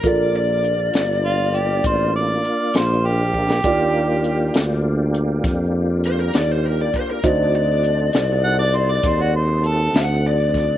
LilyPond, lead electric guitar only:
\new Staff \with { instrumentName = "Lead electric guitar" } { \time 12/8 \key g \minor \tempo 4. = 67 d''8 d''2. r2 r8 | r1 c''16 bes'16 d''16 c''16 bes'16 d''16 c''16 bes'16 | d''8 d''2. r4 fis''8 d''4 | }